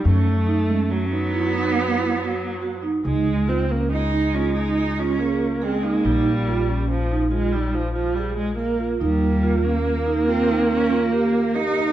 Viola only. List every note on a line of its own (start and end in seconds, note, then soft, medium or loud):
0.05 0.92 A3 medium
0.91 2.17 F#3 medium
2.18 2.79 F#3 medium
3.05 3.51 G#3 medium
3.49 3.72 C4 medium
3.71 3.92 A#3 medium
3.93 5.21 G#3 medium
5.20 5.64 A#3 medium
5.62 6.07 G#3 medium
6.06 6.90 G3 medium
6.91 7.29 F3 medium
7.32 7.54 G#3 medium
7.52 7.76 G3 medium
7.75 7.94 F3 medium
7.95 8.16 F3 medium
8.15 8.37 G3 medium
8.38 8.57 G#3 medium
8.58 8.98 A#3 medium
9.01 11.92 A#3 loud